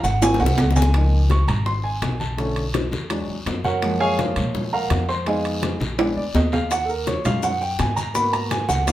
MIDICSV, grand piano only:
0, 0, Header, 1, 2, 480
1, 0, Start_track
1, 0, Key_signature, -5, "major"
1, 0, Tempo, 360577
1, 1253, Time_signature, 4, 2, 24, 8
1, 11874, End_track
2, 0, Start_track
2, 0, Title_t, "Grand piano"
2, 0, Program_c, 0, 0
2, 54, Note_on_c, 0, 78, 94
2, 287, Note_off_c, 0, 78, 0
2, 287, Note_on_c, 0, 58, 58
2, 300, Note_on_c, 0, 60, 58
2, 300, Note_on_c, 0, 66, 70
2, 301, Note_on_c, 0, 80, 103
2, 530, Note_off_c, 0, 80, 0
2, 534, Note_on_c, 0, 78, 84
2, 609, Note_off_c, 0, 58, 0
2, 616, Note_off_c, 0, 60, 0
2, 616, Note_off_c, 0, 66, 0
2, 980, Note_off_c, 0, 78, 0
2, 1013, Note_on_c, 0, 80, 92
2, 1253, Note_on_c, 0, 53, 52
2, 1257, Note_on_c, 0, 58, 51
2, 1267, Note_on_c, 0, 63, 56
2, 1572, Note_off_c, 0, 53, 0
2, 1574, Note_off_c, 0, 58, 0
2, 1579, Note_off_c, 0, 63, 0
2, 1682, Note_off_c, 0, 80, 0
2, 1741, Note_on_c, 0, 85, 90
2, 1970, Note_off_c, 0, 85, 0
2, 1971, Note_on_c, 0, 82, 88
2, 2205, Note_off_c, 0, 82, 0
2, 2210, Note_on_c, 0, 84, 96
2, 2444, Note_off_c, 0, 84, 0
2, 2445, Note_on_c, 0, 80, 82
2, 2895, Note_off_c, 0, 80, 0
2, 2929, Note_on_c, 0, 81, 77
2, 3158, Note_on_c, 0, 50, 58
2, 3169, Note_on_c, 0, 57, 50
2, 3169, Note_on_c, 0, 61, 64
2, 3484, Note_off_c, 0, 50, 0
2, 3489, Note_off_c, 0, 57, 0
2, 3490, Note_off_c, 0, 61, 0
2, 3600, Note_off_c, 0, 81, 0
2, 4127, Note_on_c, 0, 54, 56
2, 4134, Note_on_c, 0, 56, 51
2, 4144, Note_on_c, 0, 62, 65
2, 4449, Note_off_c, 0, 54, 0
2, 4452, Note_off_c, 0, 56, 0
2, 4458, Note_off_c, 0, 62, 0
2, 4854, Note_on_c, 0, 78, 94
2, 4858, Note_on_c, 0, 73, 69
2, 4861, Note_on_c, 0, 66, 69
2, 4861, Note_on_c, 0, 70, 74
2, 5086, Note_on_c, 0, 56, 53
2, 5098, Note_on_c, 0, 58, 56
2, 5103, Note_on_c, 0, 53, 66
2, 5300, Note_off_c, 0, 78, 0
2, 5302, Note_off_c, 0, 73, 0
2, 5303, Note_off_c, 0, 66, 0
2, 5303, Note_off_c, 0, 70, 0
2, 5329, Note_on_c, 0, 80, 115
2, 5331, Note_on_c, 0, 77, 94
2, 5333, Note_on_c, 0, 73, 89
2, 5335, Note_on_c, 0, 68, 92
2, 5559, Note_off_c, 0, 77, 0
2, 5563, Note_off_c, 0, 80, 0
2, 5565, Note_off_c, 0, 73, 0
2, 5566, Note_off_c, 0, 68, 0
2, 5579, Note_on_c, 0, 77, 62
2, 5583, Note_on_c, 0, 65, 54
2, 5585, Note_on_c, 0, 70, 54
2, 5590, Note_on_c, 0, 73, 48
2, 6245, Note_off_c, 0, 77, 0
2, 6247, Note_off_c, 0, 65, 0
2, 6249, Note_off_c, 0, 70, 0
2, 6251, Note_off_c, 0, 73, 0
2, 6296, Note_on_c, 0, 82, 95
2, 6302, Note_on_c, 0, 70, 69
2, 6304, Note_on_c, 0, 77, 69
2, 6307, Note_on_c, 0, 78, 72
2, 6740, Note_off_c, 0, 82, 0
2, 6744, Note_off_c, 0, 70, 0
2, 6745, Note_off_c, 0, 77, 0
2, 6747, Note_off_c, 0, 78, 0
2, 6772, Note_on_c, 0, 84, 103
2, 6778, Note_on_c, 0, 72, 80
2, 6956, Note_off_c, 0, 56, 0
2, 6962, Note_off_c, 0, 58, 0
2, 6965, Note_off_c, 0, 53, 0
2, 7005, Note_off_c, 0, 84, 0
2, 7006, Note_on_c, 0, 56, 57
2, 7008, Note_off_c, 0, 72, 0
2, 7016, Note_on_c, 0, 59, 52
2, 7022, Note_on_c, 0, 80, 78
2, 7023, Note_on_c, 0, 63, 66
2, 7027, Note_on_c, 0, 68, 66
2, 7027, Note_on_c, 0, 77, 60
2, 7029, Note_on_c, 0, 75, 62
2, 7687, Note_off_c, 0, 80, 0
2, 7690, Note_off_c, 0, 68, 0
2, 7690, Note_off_c, 0, 77, 0
2, 7691, Note_off_c, 0, 75, 0
2, 7693, Note_off_c, 0, 56, 0
2, 7698, Note_off_c, 0, 59, 0
2, 7702, Note_off_c, 0, 63, 0
2, 7965, Note_on_c, 0, 56, 60
2, 7977, Note_on_c, 0, 59, 53
2, 7983, Note_on_c, 0, 62, 64
2, 8211, Note_on_c, 0, 74, 75
2, 8288, Note_off_c, 0, 56, 0
2, 8294, Note_off_c, 0, 59, 0
2, 8297, Note_off_c, 0, 62, 0
2, 8445, Note_off_c, 0, 74, 0
2, 8466, Note_on_c, 0, 75, 83
2, 8692, Note_off_c, 0, 75, 0
2, 8694, Note_on_c, 0, 77, 88
2, 8926, Note_off_c, 0, 77, 0
2, 8944, Note_on_c, 0, 78, 95
2, 9118, Note_on_c, 0, 69, 53
2, 9152, Note_off_c, 0, 69, 0
2, 9171, Note_off_c, 0, 78, 0
2, 9177, Note_on_c, 0, 70, 74
2, 9407, Note_off_c, 0, 70, 0
2, 9418, Note_on_c, 0, 73, 80
2, 9648, Note_off_c, 0, 73, 0
2, 9650, Note_on_c, 0, 54, 55
2, 9655, Note_on_c, 0, 56, 53
2, 9661, Note_on_c, 0, 77, 95
2, 9665, Note_on_c, 0, 61, 53
2, 9668, Note_on_c, 0, 65, 64
2, 9889, Note_off_c, 0, 77, 0
2, 9903, Note_on_c, 0, 78, 89
2, 9970, Note_off_c, 0, 54, 0
2, 9973, Note_off_c, 0, 56, 0
2, 9978, Note_off_c, 0, 61, 0
2, 9979, Note_off_c, 0, 65, 0
2, 10130, Note_off_c, 0, 78, 0
2, 10136, Note_on_c, 0, 79, 86
2, 10367, Note_off_c, 0, 79, 0
2, 10377, Note_on_c, 0, 80, 83
2, 10600, Note_on_c, 0, 82, 95
2, 10607, Note_off_c, 0, 80, 0
2, 10836, Note_on_c, 0, 58, 60
2, 10839, Note_off_c, 0, 82, 0
2, 10845, Note_on_c, 0, 59, 52
2, 10849, Note_on_c, 0, 83, 101
2, 10854, Note_on_c, 0, 66, 61
2, 11083, Note_off_c, 0, 83, 0
2, 11088, Note_on_c, 0, 82, 96
2, 11323, Note_off_c, 0, 82, 0
2, 11331, Note_on_c, 0, 80, 83
2, 11563, Note_on_c, 0, 78, 96
2, 11564, Note_off_c, 0, 80, 0
2, 11755, Note_off_c, 0, 58, 0
2, 11760, Note_off_c, 0, 59, 0
2, 11765, Note_off_c, 0, 66, 0
2, 11800, Note_off_c, 0, 78, 0
2, 11801, Note_on_c, 0, 58, 61
2, 11813, Note_on_c, 0, 59, 52
2, 11817, Note_on_c, 0, 63, 55
2, 11818, Note_on_c, 0, 77, 89
2, 11820, Note_on_c, 0, 65, 64
2, 11874, Note_off_c, 0, 58, 0
2, 11874, Note_off_c, 0, 59, 0
2, 11874, Note_off_c, 0, 63, 0
2, 11874, Note_off_c, 0, 65, 0
2, 11874, Note_off_c, 0, 77, 0
2, 11874, End_track
0, 0, End_of_file